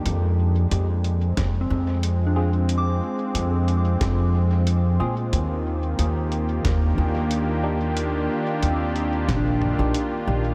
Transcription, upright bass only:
X:1
M:4/4
L:1/16
Q:1/4=91
K:Fdor
V:1 name="Upright bass" clef=bass
F,,4 F,,4 F,,2 F,,6- | F,,2 z2 F,,4 F,,6 B,,2 | E,,4 E,,4 E,,2 E,,6- | E,,2 z2 E,,4 B,,,3 B,,, z2 B,,,2 |]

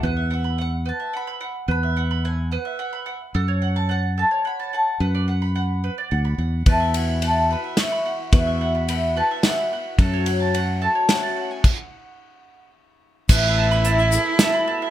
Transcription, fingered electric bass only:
X:1
M:3/4
L:1/8
Q:1/4=109
K:Emix
V:1 name="Fingered electric bass" clef=bass
E,,4 z2 | E,,4 z2 | F,,4 z2 | F,,4 D,, E,, |
E,,4 z2 | E,,4 z2 | F,,4 z2 | z6 |
A,,,4 z2 |]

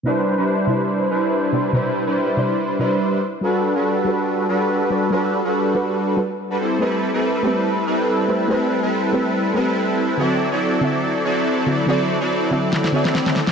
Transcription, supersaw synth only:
X:1
M:4/4
L:1/16
Q:"Swing 16ths" 1/4=142
K:Clyd
V:1 name="Supersaw synth"
[G,DEBc]3 [G,DEBc]6- [G,DEBc] [G,DEBc]6 | [G,DEBc]3 [G,DEBc]6- [G,DEBc] [G,DEBc]4 z2 | [G,DFAB]3 [G,DFAB]6- [G,DFAB] [G,DFAB]6 | [G,DFAB]3 [G,DFAB]6- [G,DFAB] z3 [G,DFAB] [G,CEAc]2 |
[G,CEAB]3 [G,CEAB]6- [G,CEAB] [G,CEAB]6 | [G,CEAB]3 [G,CEAB]6- [G,CEAB] [G,CEAB]6 | [F,CEAd]3 [F,CEAd]6- [F,CEAd] [F,CEAd]6 | [F,CEAd]3 [F,CEAd]6- [F,CEAd] [F,CEAd]6 |]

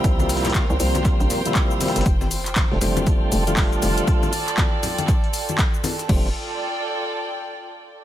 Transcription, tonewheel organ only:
X:1
M:4/4
L:1/16
Q:"Swing 16ths" 1/4=119
K:F
V:1 name="Tonewheel organ" clef=bass
[C,F,G,B,E]4- [C,F,G,B,E] [C,F,G,B,C] [C,F,G,B,C]4- [C,F,G,B,C] [C,F,G,B,E]4- [C,F,G,B,E] | z4 z [D,F,G,A,C] [D,F,G,A,C]4- [D,F,G,A,C] [D,F,G,A,F]4- [D,F,G,A,F]- | [D,F,G,A,F]2 z12 z2 | [D,F,G,A,C]2 z12 z2 |]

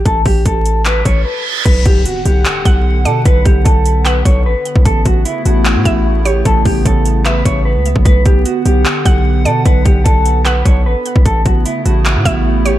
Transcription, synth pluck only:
X:1
M:4/4
L:1/8
Q:1/4=150
K:Bm
V:1 name="Synth pluck"
z8 | z4 z f2 d | z4 f4 | z4 z e2 c |
z4 e4 | z4 z f2 d | z4 f4 | z4 z e2 c |]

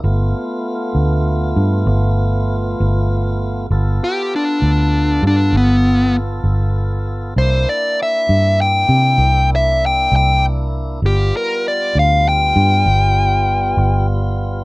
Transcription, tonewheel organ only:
X:1
M:12/8
L:1/8
Q:3/8=66
K:Gmix
V:1 name="Tonewheel organ"
[A,B,F]12 | [B,FA]12 | [_B,DE]12 | [G,B,F]12 |]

